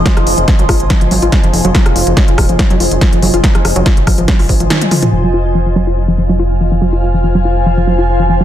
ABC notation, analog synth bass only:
X:1
M:4/4
L:1/16
Q:1/4=142
K:Fphr
V:1 name="Analog synth bass" clef=bass
z F,,, F,,, F,,, z A,,, A,,, A,,, z A,,, A,,, A,,, z F,,, F,,, F,,, | z F,,, F,,, F,,, z F,,, E,,, F,,, z F,,, F,,, F,,, z F,,, F,,, F,,, | z F,,, F,,, F,,, z A,,, A,,, A,,, z A,,, A,,, A,,, z4 | F,,,16- |
F,,,16 |]